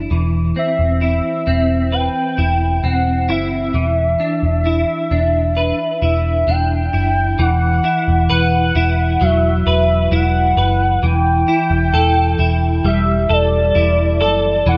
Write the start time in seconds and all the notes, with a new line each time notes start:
Already playing: D4 E4 A4
0.11 E1 E3
0.56 C4 E5
0.79 E1
1.01 E4 E5
1.47 E1 C4
1.92 B4 G5
2.38 E1 E4
2.84 E1 C4 F#5
3.29 F#1 E4 E5
3.74 E1 E3
4.20 D4
4.43 E1
4.66 E4
5.11 E1 D4
5.57 B4
6.02 E1 E4 E5
6.48 E1 D4 G5
6.93 F#1 E4
7.39 E1 E3 F#5
7.84 E4
8.08 E1
8.30 E1 B4 F#5
8.75 E1 E4
9.21 E1 F#3 E5
9.67 E1 B4
10.12 E1 E4 F#5
10.57 F#1 B4
11.03 E1 E3 G5
11.48 E4
11.71 E1
11.94 E1 A4
12.39 E1 E4
12.84 E1 G3 E5
13.30 E1 A4 D5
13.75 E1 E4
14.21 F#1 A4
14.66 E1 E3 F#5